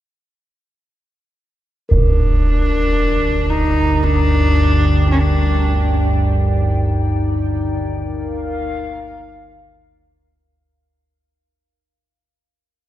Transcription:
1.89 10.44 A#4 medium
1.89 concert bass drum medium
1.93 10.55 G1 medium
1.93 10.55 D2 medium
1.93 3.51 D4 medium
1.93 7.87 G4 medium
3.03 7.86 D5 medium
3.35 7.88 G5 medium
3.50 4.05 D#4 medium
4.04 5.10 D4 loud
5.10 6.14 D4 medium
6.22 10.46 D#4 medium
7.94 10.44 A#4 medium
8.12 10.46 F5 medium

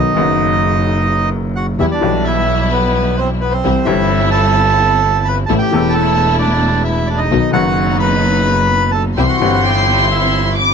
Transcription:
0.00 0.13 B1 soft
0.00 0.13 B2 medium
0.00 0.12 D#3 soft
0.00 0.13 F#3 soft
0.00 0.13 B3 soft
0.00 1.30 D#4 medium
0.00 0.13 F#4 medium
0.00 1.29 D#5 medium
0.14 1.71 F#1 medium
0.14 1.72 F#1 medium
0.14 1.72 F#2 medium
0.14 1.70 D#3 medium
0.14 1.71 F#3 medium
0.14 1.72 B3 medium
0.19 1.73 F#4 medium
1.56 1.67 F#4 soft
1.56 1.66 F#5 medium
1.79 1.99 E2 soft
1.79 1.99 E3 soft
1.79 1.99 G3 soft
1.79 1.99 B3 soft
1.79 1.99 E4 soft
1.79 1.86 E4 medium
1.79 1.99 G4 soft
1.79 1.85 E5 medium
1.91 2.25 D4 soft
1.91 2.27 D5 medium
2.01 3.57 B1 medium
2.01 3.57 B2 medium
2.01 3.56 E3 medium
2.01 3.56 G3 medium
2.01 3.57 G3 medium
2.01 3.57 B3 medium
2.01 3.57 E4 medium
2.01 3.58 G4 medium
2.24 2.69 E4 medium
2.24 2.73 E5 medium
2.72 3.16 B3 medium
2.72 3.20 B4 medium
3.18 3.30 C4 medium
3.18 3.28 C5 medium
3.41 3.53 B3 medium
3.41 3.53 B4 medium
3.51 3.86 C4 medium
3.51 3.88 C5 medium
3.64 3.84 C2 medium
3.64 3.84 C3 soft
3.64 3.84 E3 soft
3.64 3.84 G3 soft
3.64 3.84 C4 soft
3.64 3.84 E4 soft
3.64 3.84 G4 soft
3.85 5.41 G1 medium
3.85 5.42 G1 medium
3.85 5.41 G2 medium
3.85 5.40 E3 medium
3.85 5.40 G3 medium
3.85 5.41 G3 medium
3.85 5.41 C4 medium
3.85 4.30 E4 medium
3.85 5.41 E4 medium
3.85 5.42 G4 medium
3.85 4.29 E5 medium
4.31 5.22 A4 medium
4.31 5.28 A5 loud
5.25 5.38 B4 medium
5.25 5.36 B5 medium
5.46 5.69 A1 medium
5.46 5.69 A2 medium
5.46 5.69 E3 soft
5.46 5.69 A3 soft
5.46 5.69 B3 soft
5.46 5.69 E4 medium
5.46 5.54 A4 medium
5.46 5.52 A5 medium
5.50 5.69 A4 medium
5.58 5.93 G4 medium
5.58 5.95 G5 medium
5.71 7.24 E1 medium
5.71 7.24 E2 medium
5.71 7.23 E3 medium
5.71 7.23 A3 medium
5.71 7.24 A3 medium
5.71 7.24 B3 medium
5.71 7.24 E4 medium
5.71 7.25 A4 medium
5.90 6.37 A4 medium
5.90 6.35 A5 medium
6.39 6.83 D4 medium
6.39 6.82 D5 medium
6.84 7.08 E4 medium
6.84 7.09 E5 medium
7.07 7.20 D4 medium
7.07 7.20 D5 medium
7.18 7.52 D#4 medium
7.18 7.51 D#5 medium
7.31 7.51 B1 soft
7.31 7.51 B1 medium
7.31 7.51 B2 medium
7.31 7.50 D#3 soft
7.31 7.51 F#3 soft
7.31 7.51 B3 soft
7.31 7.51 D#4 soft
7.31 7.51 F#4 soft
7.51 9.09 F#1 medium
7.51 9.10 F#1 medium
7.51 9.09 F#2 medium
7.51 9.08 D#3 medium
7.51 9.09 F#3 medium
7.51 9.10 F#3 medium
7.51 9.10 B3 medium
7.51 9.10 D#4 medium
7.51 9.10 F#4 medium
7.51 7.98 F#4 medium
7.51 7.97 F#5 medium
8.00 8.92 B4 medium
8.00 8.90 B5 medium
8.91 9.05 A4 medium
8.91 9.03 A5 medium
9.17 9.38 C2 medium
9.17 9.38 C2 soft
9.17 9.38 C3 soft
9.17 9.38 E3 soft
9.17 9.37 G3 soft
9.17 9.38 G3 soft
9.17 9.37 C4 soft
9.17 9.38 C4 soft
9.17 9.38 E4 soft
9.17 9.38 G4 soft
9.17 9.25 G4 medium
9.17 9.23 G5 medium
9.17 10.53 C6 medium
9.29 9.62 F#4 medium
9.29 9.65 F#5 medium
9.40 10.74 G1 medium
9.40 10.74 G2 medium
9.40 10.74 E3 medium
9.40 10.74 G3 medium
9.40 10.74 C4 medium
9.40 10.74 E4 medium
9.40 10.74 G4 medium
9.63 10.08 G4 medium
9.63 10.07 G5 medium
10.11 10.55 E4 medium
10.11 10.54 E5 medium
10.57 10.74 D6 medium

